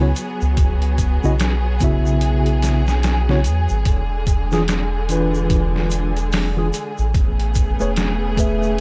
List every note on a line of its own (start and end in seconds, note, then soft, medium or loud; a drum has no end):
0.00 0.13 C#2 loud
0.00 0.09 C#3 medium
0.00 3.82 F#3 medium
0.00 3.82 B3 medium
0.00 0.09 B3 medium
0.00 0.09 E4 medium
0.00 0.10 F#4 medium
0.00 7.11 G#4 medium
0.00 0.10 C#5 medium
0.00 impact medium
0.16 closed hi-hat medium
0.16 shaker medium
0.41 1.19 C#2 loud
0.41 shaker medium
0.57 kick loud
0.57 closed hi-hat medium
0.57 shaker soft
0.82 closed hi-hat soft
0.98 kick medium
0.98 closed hi-hat medium
0.98 shaker loud
1.24 3.48 B1 loud
1.24 1.32 C#3 medium
1.24 1.33 B3 medium
1.24 1.33 E4 medium
1.24 1.33 F#4 medium
1.24 1.33 D#5 medium
1.24 shaker medium
1.40 snare loud
1.40 closed hi-hat medium
1.40 shaker soft
1.80 2.81 C#3 medium
1.80 2.82 B3 medium
1.80 2.82 E4 medium
1.80 2.83 F#4 medium
1.80 2.83 E5 medium
1.80 kick medium
1.80 closed hi-hat medium
1.80 shaker medium
2.06 shaker medium
2.21 closed hi-hat medium
2.21 shaker soft
2.46 closed hi-hat soft
2.62 snare medium
2.62 closed hi-hat medium
2.62 shaker loud
2.88 snare soft
2.88 shaker soft
3.03 snare loud
3.03 closed hi-hat medium
3.03 shaker soft
3.29 3.38 C#3 medium
3.29 3.38 B3 medium
3.29 3.38 E4 medium
3.29 3.38 F#4 medium
3.29 3.39 C#5 loud
3.29 snare medium
3.44 3.67 E2 loud
3.44 closed hi-hat medium
3.44 shaker loud
3.69 3.84 G#1 loud
3.69 shaker medium
3.85 6.71 E1 loud
3.85 7.12 D3 medium
3.85 7.12 G#3 medium
3.85 kick loud
3.85 closed hi-hat medium
3.85 shaker soft
4.27 kick medium
4.27 closed hi-hat medium
4.27 shaker medium
4.52 4.61 E3 medium
4.52 4.61 D4 medium
4.52 4.61 F4 medium
4.52 4.62 G#4 loud
4.52 snare medium
4.52 shaker medium
4.68 snare loud
4.68 closed hi-hat medium
4.68 shaker soft
5.09 6.10 E3 medium
5.09 6.10 D4 medium
5.09 6.11 F4 medium
5.09 6.12 B4 medium
5.09 closed hi-hat medium
5.09 shaker medium
5.34 shaker medium
5.50 kick loud
5.50 closed hi-hat medium
5.50 shaker soft
5.76 snare soft
5.91 closed hi-hat medium
5.91 shaker loud
6.17 closed hi-hat soft
6.17 shaker medium
6.32 snare loud
6.32 open hi-hat medium
6.32 shaker soft
6.57 6.66 E3 medium
6.57 6.66 D4 medium
6.57 6.67 F4 medium
6.57 6.67 G#4 loud
6.74 closed hi-hat medium
6.74 shaker medium
6.98 7.76 A1 loud
6.98 shaker medium
7.14 8.80 C#3 medium
7.14 8.80 A3 medium
7.14 8.80 B3 medium
7.14 8.80 G#4 medium
7.14 kick loud
7.14 closed hi-hat medium
7.14 shaker soft
7.40 closed hi-hat soft
7.55 kick medium
7.55 closed hi-hat medium
7.55 shaker loud
7.80 8.80 E1 medium
7.80 7.89 A3 medium
7.80 7.90 G#4 medium
7.80 7.90 B4 medium
7.80 7.90 C#5 loud
7.80 shaker medium
7.96 snare loud
7.96 closed hi-hat medium
7.96 shaker soft
8.37 8.80 A3 medium
8.37 8.80 G#4 medium
8.37 8.80 B4 medium
8.37 8.80 E5 medium
8.37 kick medium
8.37 closed hi-hat medium
8.37 shaker medium
8.63 shaker medium